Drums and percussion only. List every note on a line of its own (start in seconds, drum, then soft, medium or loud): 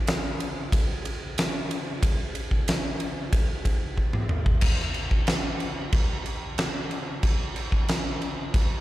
0.07 snare loud
0.07 ride medium
0.40 ride medium
0.72 kick loud
0.72 ride loud
1.05 ride medium
1.38 snare loud
1.38 ride loud
1.71 ride medium
2.03 kick loud
2.03 ride loud
2.35 ride medium
2.51 kick medium
2.68 snare loud
2.68 ride loud
3.00 ride medium
3.33 kick loud
3.33 ride loud
3.65 kick medium
3.65 ride medium
3.98 kick medium
4.13 mid tom medium
4.29 mid tom medium
4.46 kick medium
4.61 kick loud
4.61 crash loud
4.61 crash medium
4.79 snare soft
4.94 crash medium
5.11 kick medium
5.27 snare loud
5.27 crash medium
5.60 crash medium
5.92 kick loud
5.92 crash medium
6.26 crash medium
6.58 snare loud
6.58 crash medium
6.91 crash medium
7.23 kick loud
7.23 crash medium
7.56 crash medium
7.72 kick medium
7.88 snare loud
7.88 crash medium
8.22 crash medium
8.54 kick loud
8.54 crash medium